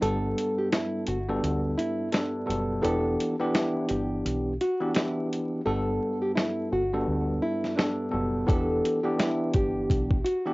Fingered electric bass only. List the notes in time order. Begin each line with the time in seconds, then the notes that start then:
0.02 G1
1.08 G1
1.43 D2
2.49 F#1
2.84 E1
3.90 G1
4.25 B1
5.66 G1
6.72 G1
7.07 D2
8.14 F#1
8.49 E1
9.55 G1
9.90 B1